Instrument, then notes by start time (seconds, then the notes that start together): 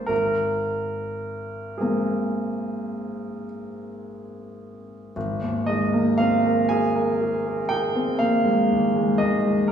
grand piano
Already playing: A#1 G#3 A#3 C4 A#4 C5 D5
0.06 G#1 A#4
1.78 G#3 A#3 C4 G#4 A#4
5.16 G#1
5.42 D#2
5.66 G#3 D#5
5.94 A#3
6.18 C4 F5
6.46 A#4
6.69 G#4 G#5
6.96 A#4
7.21 G#4
7.47 A#4
7.69 G#4 G5
7.96 C4
8.19 A#3 F5
8.45 G#3
8.71 D#2
8.96 G#3
9.18 D#2 D#5
9.45 G#3
9.68 A#4